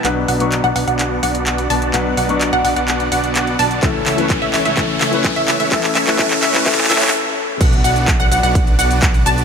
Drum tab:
CC |--------------------------------|--------------------------------|--------------------------------|--------------------------------|
HH |x---o-x-x-x-o-x-x---o-x-x-x-o-x-|x---o-x-x-x-o-x-x-x-o-x-x-x-o-x-|x---o-x-x-x-o-x-x---o-x-x-x-o-x-|x---o-x-x-x-o-x-x-x-o-x---------|
SH |--------------------------------|--------------------------------|--------------------------------|--------------------------------|
CP |x-------x-------x-------x-------|x-------x-------x-------x-------|x---x---x---x---x---x---x---x---|x-x-x-x-x-x-x-x-xxxxxxxx--------|
BD |--------------------------------|--------------------------------|o-------o-------o-------o-------|o-------o-------o---------------|

CC |x-------------------------------|
HH |x-x-o-x-x---o-x-x-x-o-x-x-x-o-x-|
SH |x-x-x-x-x-x-x-x-x-x-x-x-x-x-x-x-|
CP |--------x---------------x-------|
BD |o-------o-------o-------o-------|